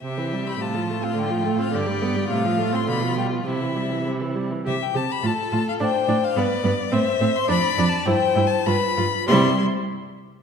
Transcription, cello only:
\new Staff \with { instrumentName = "Cello" } { \clef bass \time 2/4 \key c \major \tempo 4 = 104 c4 a,4~ | a,4 g,4 | a,4 b,4 | c4. r8 |
c8 c8 a,8 a,8 | a,8 a,8 g,8 g,8 | a,8 a,8 f,8 f,8 | g,8 g,8 g,8 g,8 |
c8 r4. | }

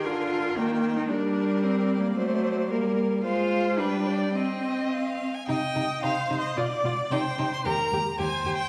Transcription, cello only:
\new Staff \with { instrumentName = "Cello" } { \clef bass \time 2/4 \key c \minor \tempo 4 = 111 f'4 bes8. ees'16 | d'4 \tuplet 3/2 { c'4 bes8 } | a4 bes8 r8 | f'4 d'4 |
c'4. r8 | c8 c8 c8 c8 | b,8 b,8 c8 c8 | ees,8 ees,8 ees,8 ees,8 | }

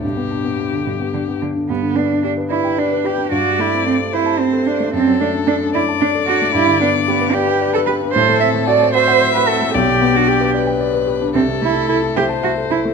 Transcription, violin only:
\new Staff \with { instrumentName = "Violin" } { \time 6/8 \key g \major \tempo 4. = 74 g'2~ g'8 r8 | r4. b'4. | d''4. c''4. | a'4. d''4.~ |
d''4. b'4. | a'4. e''4. | d''4. b'4. | a'4. c''4. | }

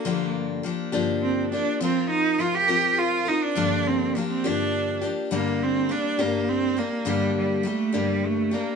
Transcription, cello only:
\new Staff \with { instrumentName = "Cello" } { \time 6/8 \key g \minor \tempo 4. = 68 bes4 r4 c'8 d'8 | c'8 ees'8 f'16 g'8. f'8 ees'16 d'16~ | d'8 c'8 bes16 c'16 d'4 r8 | bes8 c'8 d'8 bes8 c'8 bes8 |
g8 g8 a8 g8 a8 bes8 | }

